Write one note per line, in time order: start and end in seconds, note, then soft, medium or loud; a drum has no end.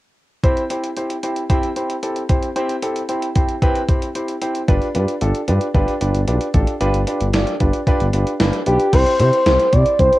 0.43 0.62 C4 loud
0.43 0.62 E4 medium
0.43 0.62 G4 medium
0.43 0.62 C5 loud
0.43 kick loud
0.43 closed hi-hat medium
0.57 closed hi-hat soft
0.70 0.88 C4 medium
0.70 0.88 E4 medium
0.70 0.88 G4 medium
0.70 0.88 C5 medium
0.70 closed hi-hat medium
0.84 closed hi-hat medium
0.96 1.15 C4 medium
0.96 1.15 E4 medium
0.96 1.15 G4 medium
0.96 1.15 C5 medium
0.96 closed hi-hat medium
1.10 closed hi-hat medium
1.23 1.41 C4 medium
1.23 1.41 E4 medium
1.23 1.41 G4 medium
1.23 1.41 C5 medium
1.23 closed hi-hat medium
1.36 closed hi-hat soft
1.50 1.68 C4 loud
1.50 1.68 E4 medium
1.50 1.68 G4 medium
1.50 1.68 C5 loud
1.50 kick medium
1.50 closed hi-hat medium
1.63 closed hi-hat soft
1.76 1.94 C4 medium
1.76 1.94 E4 medium
1.76 1.94 G4 medium
1.76 1.94 C5 medium
1.76 closed hi-hat medium
1.90 closed hi-hat soft
2.03 2.21 C4 medium
2.03 2.21 E4 medium
2.03 2.21 G4 medium
2.03 2.21 A4 medium
2.03 closed hi-hat medium
2.16 closed hi-hat soft
2.29 2.48 C4 medium
2.29 2.48 E4 medium
2.29 2.48 G4 medium
2.29 2.48 C5 medium
2.29 kick medium
2.29 closed hi-hat medium
2.43 closed hi-hat soft
2.56 2.74 C4 loud
2.56 2.74 E4 medium
2.56 2.74 G4 medium
2.56 2.74 C5 loud
2.56 closed hi-hat medium
2.69 closed hi-hat soft
2.82 3.01 C4 medium
2.82 3.01 E4 medium
2.82 3.01 G4 medium
2.82 3.01 A4 medium
2.82 closed hi-hat medium
2.96 closed hi-hat medium
3.09 3.27 C4 medium
3.09 3.27 E4 medium
3.09 3.27 G4 medium
3.09 3.27 C5 medium
3.09 closed hi-hat medium
3.22 closed hi-hat soft
3.36 3.54 C4 medium
3.36 3.54 E4 medium
3.36 3.54 G4 medium
3.36 3.54 C5 medium
3.36 kick medium
3.36 closed hi-hat medium
3.49 closed hi-hat soft
3.62 3.80 C4 loud
3.62 3.80 E4 medium
3.62 3.80 G4 medium
3.62 3.80 B4 loud
3.62 kick medium
3.62 closed hi-hat medium
3.75 closed hi-hat soft
3.89 4.07 C4 medium
3.89 4.07 E4 medium
3.89 4.07 G4 medium
3.89 4.07 C5 medium
3.89 kick medium
3.89 closed hi-hat medium
4.02 closed hi-hat soft
4.15 4.33 C4 medium
4.15 4.33 E4 medium
4.15 4.33 G4 medium
4.15 4.33 C5 medium
4.15 closed hi-hat medium
4.28 closed hi-hat soft
4.42 4.60 C4 medium
4.42 4.60 E4 medium
4.42 4.60 G4 medium
4.42 4.60 C5 medium
4.42 closed hi-hat medium
4.55 closed hi-hat medium
4.68 4.80 G1 loud
4.68 4.86 D4 loud
4.68 4.86 F4 medium
4.68 4.86 G4 medium
4.68 4.86 B4 loud
4.68 kick loud
4.68 closed hi-hat medium
4.82 closed hi-hat soft
4.95 5.06 G2 medium
4.95 5.13 D4 medium
4.95 5.13 F4 medium
4.95 5.13 G4 medium
4.95 5.13 B4 medium
4.95 closed hi-hat medium
5.08 closed hi-hat medium
5.21 5.33 G1 medium
5.21 5.40 D4 medium
5.21 5.40 F4 medium
5.21 5.40 G4 medium
5.21 5.40 A4 medium
5.21 closed hi-hat medium
5.35 closed hi-hat medium
5.48 5.59 G2 loud
5.48 5.66 D4 medium
5.48 5.66 F4 medium
5.48 5.66 G4 medium
5.48 5.66 B4 medium
5.48 closed hi-hat medium
5.61 closed hi-hat soft
5.74 5.86 G1 loud
5.74 5.93 D4 loud
5.74 5.93 F4 medium
5.74 5.93 G4 loud
5.74 5.93 B4 loud
5.74 kick medium
5.74 closed hi-hat medium
5.88 closed hi-hat soft
6.01 6.12 G1 loud
6.01 6.19 D4 medium
6.01 6.19 F4 medium
6.01 6.19 G4 medium
6.01 6.19 B4 medium
6.01 closed hi-hat medium
6.14 6.26 G1 medium
6.14 closed hi-hat soft
6.28 6.39 B1 medium
6.28 6.46 D4 medium
6.28 6.46 F4 medium
6.28 6.46 G4 medium
6.28 6.46 B4 medium
6.28 closed hi-hat medium
6.41 closed hi-hat soft
6.54 6.66 A1 loud
6.54 6.72 D4 medium
6.54 6.72 F4 medium
6.54 6.72 G4 medium
6.54 6.72 A4 medium
6.54 kick medium
6.54 closed hi-hat medium
6.67 closed hi-hat soft
6.81 6.92 G1 loud
6.81 6.99 D4 loud
6.81 6.99 F4 medium
6.81 6.99 G4 medium
6.81 6.99 B4 loud
6.81 closed hi-hat medium
6.94 7.05 G1 medium
6.94 closed hi-hat medium
7.07 7.25 D4 medium
7.07 7.25 F4 medium
7.07 7.25 G4 medium
7.07 7.25 B4 medium
7.07 closed hi-hat medium
7.21 7.32 G1 loud
7.21 closed hi-hat medium
7.34 7.45 G1 loud
7.34 7.52 D4 medium
7.34 7.52 F4 medium
7.34 7.52 G4 medium
7.34 7.52 D5 medium
7.34 snare loud
7.34 closed hi-hat medium
7.47 closed hi-hat soft
7.60 7.72 G1 loud
7.60 7.78 D4 medium
7.60 7.78 F4 medium
7.60 7.78 G4 medium
7.60 7.78 B4 medium
7.60 kick medium
7.60 closed hi-hat medium
7.73 closed hi-hat soft
7.87 8.05 D4 loud
7.87 8.05 F4 medium
7.87 8.05 G4 medium
7.87 8.05 B4 loud
7.87 kick medium
7.87 closed hi-hat medium
8.00 8.12 G1 medium
8.00 closed hi-hat soft
8.13 8.25 G1 medium
8.13 8.32 D4 medium
8.13 8.32 F4 medium
8.13 8.32 G4 medium
8.13 8.32 B4 medium
8.13 closed hi-hat medium
8.27 closed hi-hat medium
8.40 8.51 G1 loud
8.40 8.58 D4 medium
8.40 8.58 F4 medium
8.40 8.58 G4 medium
8.40 8.58 B4 medium
8.40 snare loud
8.40 closed hi-hat medium
8.53 closed hi-hat soft
8.66 8.78 B1 medium
8.66 8.85 D4 medium
8.66 8.85 F4 medium
8.66 8.85 G4 medium
8.66 8.95 G4 medium
8.66 8.85 B4 medium
8.66 closed hi-hat medium
8.80 closed hi-hat medium
8.93 9.04 C2 loud
8.93 9.11 C4 medium
8.93 9.11 E4 medium
8.93 9.11 G4 medium
8.93 9.11 C5 loud
8.93 9.19 C5 loud
8.93 kick loud
8.93 closed hi-hat medium
8.93 crash medium
9.06 closed hi-hat medium
9.20 9.31 C3 medium
9.20 9.38 C4 medium
9.20 9.38 E4 medium
9.20 9.38 G4 medium
9.20 9.74 C5 loud
9.20 9.38 C5 loud
9.20 closed hi-hat medium
9.33 closed hi-hat medium
9.46 9.58 C2 loud
9.46 9.64 C4 medium
9.46 9.64 E4 medium
9.46 9.64 G4 medium
9.46 9.64 C5 medium
9.46 snare loud
9.46 closed hi-hat medium
9.59 closed hi-hat medium
9.73 9.84 C3 medium
9.73 9.91 C4 medium
9.73 9.91 E4 medium
9.73 9.91 G4 medium
9.73 9.91 C5 medium
9.73 9.99 D5 loud
9.73 kick medium
9.73 closed hi-hat medium
9.86 closed hi-hat soft
9.99 10.11 C2 loud
9.99 10.17 C4 medium
9.99 10.17 E4 medium
9.99 10.17 G4 medium
9.99 10.17 C5 medium
9.99 10.19 C5 loud
9.99 kick medium
9.99 closed hi-hat medium
10.13 closed hi-hat soft